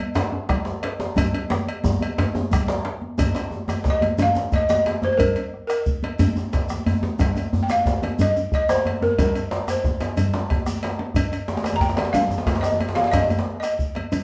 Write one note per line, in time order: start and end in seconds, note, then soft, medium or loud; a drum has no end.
0.15 cowbell medium
0.15 djembe slap loud
0.15 djembe slap medium
0.15 djembe bass medium
0.15 shekere soft
0.32 bombo rim soft
0.32 djembe slap soft
0.32 djembe tone medium
0.49 bombo rim medium
0.49 bombo low medium
0.49 cowbell medium
0.49 djembe slap medium
0.49 low conga medium
0.65 djembe slap medium
0.83 cowbell medium
0.83 djembe slap medium
1.00 djembe slap medium
1.00 high conga medium
1.16 bombo low medium
1.16 cowbell medium
1.16 djembe tone loud
1.16 low conga medium
1.16 djembe bass medium
1.16 shekere soft
1.34 cowbell medium
1.34 djembe tone medium
1.34 shekere soft
1.50 bombo rim medium
1.50 djembe slap medium
1.50 djembe tone medium
1.50 shekere soft
1.69 cowbell medium
1.84 bombo rim soft
1.84 bombo low medium
1.84 djembe slap soft
1.84 djembe tone loud
1.84 low conga medium
1.84 shekere medium
2.01 bombo rim soft
2.01 cowbell medium
2.01 high conga medium
2.01 shekere soft
2.18 cowbell medium
2.18 djembe slap medium
2.18 high conga soft
2.18 djembe tone loud
2.18 djembe bass medium
2.34 djembe slap soft
2.34 high conga soft
2.34 djembe tone loud
2.34 djembe tone medium
2.51 bombo rim medium
2.51 bombo low medium
2.51 cowbell medium
2.51 low conga medium
2.51 shekere medium
2.68 bombo rim soft
2.68 djembe slap loud
2.85 bombo rim soft
2.85 djembe slap medium
3.02 djembe slap soft
3.02 high conga medium
3.18 bombo rim soft
3.18 bombo low loud
3.18 cowbell medium
3.18 djembe tone medium
3.18 djembe bass medium
3.18 low conga medium
3.18 shekere medium
3.35 cowbell soft
3.35 djembe slap medium
3.35 high conga soft
3.35 djembe tone medium
3.35 shekere soft
3.51 bombo rim soft
3.51 djembe tone medium
3.51 high conga soft
3.68 bombo rim medium
3.68 cowbell soft
3.68 djembe slap soft
3.68 djembe tone medium
3.68 shekere soft
3.84 bombo low medium
3.84 djembe slap medium
3.84 shekere soft
3.90 4.22 D#5 loud
4.01 cowbell soft
4.01 djembe slap soft
4.01 djembe tone medium
4.01 high conga medium
4.18 4.55 F5 loud
4.18 cowbell soft
4.18 djembe tone loud
4.18 low conga medium
4.18 djembe bass medium
4.18 shekere medium
4.35 bombo rim soft
4.35 djembe slap soft
4.35 djembe slap medium
4.35 djembe tone medium
4.35 shekere soft
4.52 4.69 D#5 medium
4.52 bombo low medium
4.52 cowbell soft
4.52 djembe tone medium
4.52 shekere soft
4.69 5.04 D#5 medium
4.69 bombo rim medium
4.69 djembe tone loud
4.69 high conga soft
4.69 shekere soft
4.86 cowbell soft
4.86 djembe slap medium
4.86 djembe slap soft
5.02 5.11 C5 medium
5.02 bombo rim soft
5.02 djembe slap medium
5.02 djembe tone medium
5.13 5.19 C5 medium
5.18 5.65 A#4 medium
5.18 bombo rim soft
5.18 bombo low loud
5.18 cowbell medium
5.18 low conga medium
5.18 djembe bass medium
5.18 shekere medium
5.36 cowbell soft
5.36 high conga soft
5.36 djembe tone medium
5.36 shekere soft
5.52 bombo rim soft
5.52 high conga soft
5.67 6.31 A#4 medium
5.67 bombo rim medium
5.67 cowbell soft
5.67 djembe slap soft
5.67 shekere soft
5.86 bombo low loud
5.86 shekere soft
6.03 cowbell soft
6.03 djembe slap medium
6.03 high conga medium
6.19 cowbell soft
6.19 djembe bass loud
6.19 low conga medium
6.19 djembe bass medium
6.19 shekere medium
6.36 bombo rim soft
6.36 djembe slap soft
6.36 djembe tone medium
6.36 shekere soft
6.53 bombo low medium
6.53 cowbell soft
6.53 djembe slap medium
6.53 shekere soft
6.69 bombo rim medium
6.69 high conga soft
6.69 djembe tone medium
6.69 shekere soft
6.86 cowbell soft
6.86 djembe bass loud
7.03 bombo rim soft
7.03 djembe slap medium
7.03 high conga medium
7.03 djembe tone medium
7.19 bombo rim soft
7.19 bombo low loud
7.19 cowbell soft
7.19 djembe slap medium
7.19 djembe bass medium
7.19 low conga medium
7.19 shekere medium
7.35 cowbell soft
7.35 djembe tone medium
7.35 high conga soft
7.35 shekere soft
7.53 bombo rim soft
7.53 high conga soft
7.53 djembe bass medium
7.63 7.69 G5 medium
7.69 8.17 F5 medium
7.69 bombo rim medium
7.69 cowbell soft
7.69 djembe slap soft
7.69 djembe tone medium
7.69 shekere soft
7.85 bombo low medium
7.85 djembe slap medium
7.85 shekere soft
8.02 cowbell soft
8.02 djembe slap medium
8.02 djembe tone medium
8.02 high conga medium
8.19 8.51 D#5 medium
8.19 cowbell soft
8.19 low conga medium
8.19 djembe bass medium
8.19 shekere medium
8.36 bombo rim soft
8.36 djembe slap soft
8.36 djembe tone medium
8.36 shekere soft
8.52 8.62 D#5 medium
8.52 bombo low medium
8.52 cowbell soft
8.52 shekere soft
8.69 9.04 C5 medium
8.69 bombo rim medium
8.69 djembe slap loud
8.69 high conga soft
8.69 shekere soft
8.85 cowbell soft
8.85 djembe slap soft
8.85 djembe tone medium
9.02 9.19 A#4 medium
9.02 bombo rim soft
9.02 djembe slap medium
9.02 high conga medium
9.02 djembe tone medium
9.18 9.66 A#4 medium
9.18 bombo low loud
9.18 cowbell medium
9.18 djembe slap medium
9.18 djembe bass medium
9.18 low conga medium
9.18 shekere medium
9.35 cowbell soft
9.35 djembe slap soft
9.35 djembe tone medium
9.35 shekere soft
9.51 bombo rim soft
9.51 djembe slap medium
9.68 10.64 C5 medium
9.68 bombo rim medium
9.68 cowbell soft
9.68 djembe tone medium
9.68 shekere soft
9.84 bombo low medium
9.84 djembe tone medium
9.84 high conga soft
9.84 shekere soft
10.00 cowbell soft
10.00 djembe slap medium
10.00 djembe slap soft
10.00 high conga medium
10.00 shekere soft
10.17 cowbell soft
10.17 djembe slap soft
10.17 high conga soft
10.17 djembe bass medium
10.17 low conga medium
10.17 shekere medium
10.33 djembe slap medium
10.33 djembe tone medium
10.50 bombo rim soft
10.50 bombo low medium
10.50 cowbell soft
10.50 djembe slap soft
10.50 high conga soft
10.50 djembe tone medium
10.66 bombo rim medium
10.66 djembe tone medium
10.66 shekere soft
10.83 bombo rim soft
10.83 cowbell soft
10.83 djembe slap soft
10.83 djembe slap medium
10.98 bombo rim soft
10.98 djembe slap medium
10.98 high conga medium
11.14 bombo rim soft
11.14 bombo low medium
11.14 cowbell medium
11.14 djembe bass medium
11.14 low conga medium
11.14 shekere soft
11.32 cowbell soft
11.32 djembe tone medium
11.32 high conga soft
11.32 shekere soft
11.48 bombo rim soft
11.48 djembe slap medium
11.48 high conga soft
11.57 djembe slap medium
11.64 bombo rim medium
11.64 cowbell soft
11.64 djembe slap medium
11.64 djembe slap soft
11.64 shekere soft
11.73 11.82 A#5 medium
11.73 djembe tone medium
11.80 12.12 G5 loud
11.80 bombo low medium
11.80 djembe tone medium
11.80 shekere soft
11.89 djembe slap medium
11.97 cowbell soft
11.97 djembe slap loud
11.97 djembe slap soft
11.97 high conga medium
12.05 djembe slap medium
12.13 12.44 F5 medium
12.13 cowbell soft
12.13 djembe slap medium
12.13 low conga medium
12.13 djembe bass medium
12.13 shekere medium
12.22 djembe tone medium
12.30 bombo rim soft
12.30 djembe slap soft
12.30 djembe tone medium
12.30 shekere soft
12.38 djembe slap medium
12.46 bombo low medium
12.46 cowbell soft
12.46 djembe slap loud
12.46 shekere soft
12.55 djembe slap medium
12.61 12.97 D#5 medium
12.61 bombo rim medium
12.61 djembe slap medium
12.61 high conga soft
12.61 shekere soft
12.72 djembe tone medium
12.80 cowbell soft
12.80 djembe slap soft
12.80 djembe tone medium
12.89 djembe slap medium
12.95 13.00 F5 medium
12.95 bombo rim soft
12.95 djembe slap loud
12.95 high conga medium
13.04 13.14 F5 medium
13.04 djembe slap medium
13.11 13.43 D#5 medium
13.11 bombo low medium
13.11 cowbell medium
13.11 djembe slap medium
13.11 low conga medium
13.11 djembe bass medium
13.11 shekere medium
13.22 djembe tone medium
13.30 cowbell soft
13.30 djembe tone medium
13.30 high conga soft
13.30 shekere soft
13.38 djembe slap medium
13.46 bombo rim soft
13.46 high conga soft
13.60 14.23 D#5 medium
13.60 bombo rim medium
13.60 cowbell soft
13.60 djembe slap soft
13.60 shekere soft
13.79 bombo low medium
13.79 shekere soft
13.95 cowbell soft
13.95 djembe slap medium
13.95 high conga soft
14.12 cowbell soft
14.12 djembe bass medium
14.12 low conga medium
14.12 shekere medium